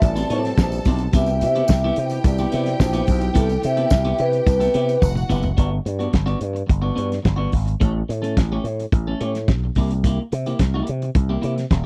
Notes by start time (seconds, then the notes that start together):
Already playing: B2 C3 G3
0.02 A1 A4 D5 A5, muted clean electric guitar stroke, kick, closed hi-hat, tambourine
0.16 C4 E4 A4, closed hi-hat, tambourine
0.30 A2 C4 E4 G4 C5, closed hi-hat
0.43 muted clean electric guitar stroke, snare, closed hi-hat
0.58 A#1, kick, snare, tambourine
0.72 muted clean electric guitar stroke, tambourine
0.85 B1 C4 E4 G4, kick, open hi-hat, tambourine
0.99 muted clean electric guitar stroke, closed hi-hat, tambourine
1.13 C2 B3 E4 G4 E5 G5, kick, closed hi-hat, tambourine
1.26 muted clean electric guitar stroke, closed hi-hat, tambourine
1.41 C3 E5, muted clean electric guitar stroke, closed hi-hat, tambourine
1.55 B3 E4 G4, closed hi-hat
1.68 C2, muted clean electric guitar stroke, kick, snare, tambourine
1.84 B3 E4 G4
1.96 C3, muted clean electric guitar stroke, closed hi-hat
2.10 muted clean electric guitar stroke, closed hi-hat, tambourine
2.24 C2 D5, muted clean electric guitar stroke, kick, closed hi-hat, tambourine
2.38 B3 E4 G4, tambourine
2.52 C3 B3 E4 G4, closed hi-hat
2.66 muted clean electric guitar stroke, snare, closed hi-hat
2.80 A#1 C5, muted clean electric guitar stroke, kick, snare, tambourine
2.93 B3 E4 G4, closed hi-hat, tambourine
3.07 B1, kick, open hi-hat, tambourine
3.21 muted clean electric guitar stroke, closed hi-hat, tambourine
3.34 C2 B3 E4 A4, kick, closed hi-hat, tambourine
3.49 muted clean electric guitar stroke, closed hi-hat, tambourine
3.62 C3 E5, muted clean electric guitar stroke, closed hi-hat, tambourine
3.77 B3 E4 A4, closed hi-hat
3.90 C2, muted clean electric guitar stroke, kick, snare, tambourine
4.04 B3 E4 G4, closed hi-hat
4.18 C3 B4, muted clean electric guitar stroke, closed hi-hat
4.32 muted clean electric guitar stroke, closed hi-hat
4.46 C2, muted clean electric guitar stroke, kick, closed hi-hat, tambourine
4.60 B3 E4 A4, closed hi-hat, tambourine
4.74 C3 B3 E4 G4, closed hi-hat
4.88 muted clean electric guitar stroke, closed hi-hat, tambourine
5.01 F1 F#4 F#5, muted clean electric guitar stroke, kick, high tom, tambourine
5.15 muted clean electric guitar stroke, mid tom, tambourine
5.29 F#1 B3 E4 G4, mid tom, tambourine
5.42 muted clean electric guitar stroke, floor tom, tambourine
5.57 G1 B3 D4 F#4, kick, closed hi-hat
5.71 muted clean electric guitar stroke
5.86 G2, muted clean electric guitar stroke, closed hi-hat
5.99 B3 D4 F#4, closed hi-hat
6.12 G1, muted clean electric guitar stroke, kick, snare, closed hi-hat
6.26 B3 D4 F#4, closed hi-hat
6.40 G2, muted clean electric guitar stroke, closed hi-hat
6.53 muted clean electric guitar stroke, closed hi-hat
6.67 G1, muted clean electric guitar stroke, kick, closed hi-hat
6.82 B3 D4 F#4
6.95 G2 B3 D4 F#4, closed hi-hat
7.10 muted clean electric guitar stroke, snare, closed hi-hat
7.23 G1, muted clean electric guitar stroke, kick, snare, closed hi-hat
7.36 B3 D4 F#4
7.52 G#1, muted clean electric guitar stroke, kick, open hi-hat
7.66 muted clean electric guitar stroke, closed hi-hat
7.80 A1 A3 C#4 A4, kick, closed hi-hat
7.94 muted clean electric guitar stroke
8.09 A2, muted clean electric guitar stroke, closed hi-hat
8.22 A3 C#4 A4, closed hi-hat
8.37 A1, muted clean electric guitar stroke, kick, snare, closed hi-hat
8.52 A3 C#4 G4
8.64 A2, muted clean electric guitar stroke, closed hi-hat
8.80 muted clean electric guitar stroke, closed hi-hat
8.92 A1, muted clean electric guitar stroke, kick, closed hi-hat
9.07 A3 C#4 A4
9.21 A2 A3 C#4 G4, closed hi-hat
9.35 muted clean electric guitar stroke, snare, closed hi-hat
9.48 B1, kick, snare, closed hi-hat
9.64 muted clean electric guitar stroke
9.75 C2 A#3 E4 G4, kick, open hi-hat
9.90 muted clean electric guitar stroke, closed hi-hat
10.04 A#3 E4 G4, kick, closed hi-hat
10.20 muted clean electric guitar stroke
10.32 C3, muted clean electric guitar stroke, closed hi-hat
10.46 A#3 E4 G4, closed hi-hat
10.59 C2, muted clean electric guitar stroke, kick, snare, closed hi-hat
10.74 A#3 E4 G4
10.87 C3, muted clean electric guitar stroke, closed hi-hat
11.02 muted clean electric guitar stroke, closed hi-hat
11.15 C2, muted clean electric guitar stroke, kick, closed hi-hat
11.29 A#3 E4 G4
11.41 C3 A#3 E4 G4, closed hi-hat
11.55 muted clean electric guitar stroke, snare, closed hi-hat
11.71 D#1, muted clean electric guitar stroke, kick, snare, closed hi-hat